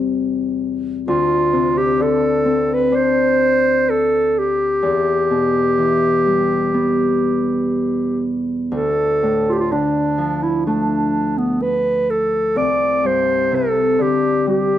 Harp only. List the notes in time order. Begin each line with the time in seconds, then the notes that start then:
Already playing: E2 C3 E3 G3 C4
1.08 D2
1.53 C3
2.00 D3
2.45 C4
2.92 D4
4.82 E2
5.31 B2
5.78 E3
6.26 G3
6.74 B3
8.72 D2
9.23 A2
9.72 D3
10.18 F3
10.67 A3
12.56 C2
13.04 G2
13.52 C3
13.99 D3
14.47 G3